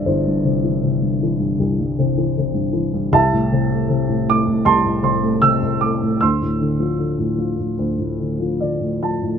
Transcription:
0.00 1.58 C2 soft
0.00 0.27 G2 soft
0.00 0.45 C3 soft
0.00 0.64 E3 soft
0.00 3.15 B4 medium
0.00 0.06 C5 medium
0.00 3.15 D5 medium
0.00 3.14 E5 medium
0.06 3.09 G1 soft
0.06 1.58 E4 soft
0.06 1.57 C5 medium
0.27 1.00 G2 soft
0.45 0.81 C3 soft
0.64 1.21 E3 soft
0.82 1.97 C3 soft
1.02 1.38 G2 soft
1.23 2.16 E3 soft
1.39 1.78 G2 soft
1.60 3.08 C2 soft
1.80 2.52 G2 soft
1.99 2.36 C3 soft
2.18 2.71 E3 soft
2.38 3.11 C3 soft
2.54 2.92 G2 soft
2.73 3.11 E3 soft
2.94 3.12 G2 soft
3.13 4.64 C2 medium
3.13 4.60 E5 medium
3.13 3.84 A5 medium
3.33 4.07 A2 soft
3.52 3.87 C3 soft
3.71 4.26 A3 soft
3.89 5.01 C3 soft
4.09 4.45 A2 soft
4.28 5.21 A3 soft
4.28 4.66 D6 medium
4.47 4.83 A2 soft
4.65 6.17 C2 soft
4.65 6.17 A5 medium
4.65 5.02 C6 medium
4.85 5.60 A2 soft
5.03 5.40 C3 soft
5.03 5.43 C6 medium
5.22 5.80 A3 soft
5.42 6.18 C3 soft
5.42 5.82 E6 medium
5.62 6.00 A2 soft
5.81 6.19 A3 soft
5.81 6.21 D6 medium
6.02 6.20 A2 soft
6.21 7.77 D2 medium
6.21 7.75 C6 soft
6.21 7.74 E6 medium
6.42 7.17 A2 soft
6.60 6.97 D3 soft
6.79 7.36 F3 soft
6.98 8.19 D3 soft
7.19 7.57 A2 soft
7.38 8.38 F3 soft
7.58 7.97 A2 soft
7.79 9.39 D2 soft
7.99 8.79 A2 soft
8.20 8.59 D3 soft
8.40 9.01 F3 soft
8.60 9.39 D3 soft
8.60 8.99 D5 soft
8.81 9.21 A2 soft
9.03 9.39 F3 soft
9.03 9.39 A5 soft
9.23 9.39 A2 soft

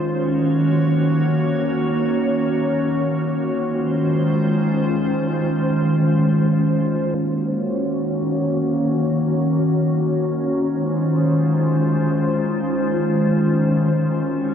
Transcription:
0.00 3.57 D#3 medium
0.00 3.57 C#4 medium
0.09 3.58 A#3 medium
0.09 3.58 F#4 medium
0.09 3.58 C#5 medium
3.61 7.11 D#3 medium
3.61 7.11 G#3 medium
3.61 7.11 C#4 medium
3.61 7.11 F4 medium
3.61 7.11 C5 medium
7.14 14.54 D#3 medium
7.14 10.64 A#3 medium
7.14 14.54 C#4 medium
7.14 10.64 F#4 medium
7.14 10.64 C#5 medium
10.67 14.17 G#3 medium
10.67 14.17 F4 medium
10.67 14.17 C5 medium
14.20 14.54 A#3 medium
14.20 14.54 F#4 medium
14.20 14.54 C#5 medium

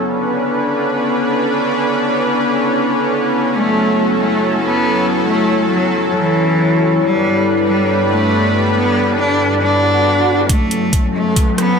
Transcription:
0.00 11.79 B3 medium
0.00 11.79 E4 medium
0.00 11.79 A4 medium
0.06 6.98 C#4 medium
0.06 3.50 D4 medium
0.06 3.50 B4 medium
1.25 3.54 D6 medium
3.54 7.02 F#3 medium
3.54 6.98 F#3 medium
3.54 4.11 A3 medium
3.54 6.98 A4 medium
4.19 4.54 A3 medium
4.19 11.79 C#5 medium
4.62 5.19 B3 medium
5.28 5.62 A3 medium
5.71 6.06 F#3 medium
6.15 6.93 E3 medium
7.02 10.50 G2 medium
7.02 7.58 G3 loud
7.02 10.46 G3 medium
7.02 10.46 D4 medium
7.02 10.46 B4 medium
7.67 8.01 G3 medium
8.10 8.67 A3 medium
8.76 9.10 B3 medium
9.19 9.54 D4 medium
9.62 10.41 D4 medium
9.62 swell medium
10.49 11.79 F#3 medium
10.49 11.06 A3 medium
10.49 11.79 C#4 medium
10.49 11.79 A4 medium
10.49 kick medium
10.49 closed hi-hat medium
10.49 riser medium
10.71 closed hi-hat medium
10.93 kick medium
10.93 closed hi-hat medium
11.15 11.49 A3 medium
11.36 kick loud
11.36 closed hi-hat medium
11.58 11.79 B3 medium
11.58 cross-stick medium
11.58 closed hi-hat medium

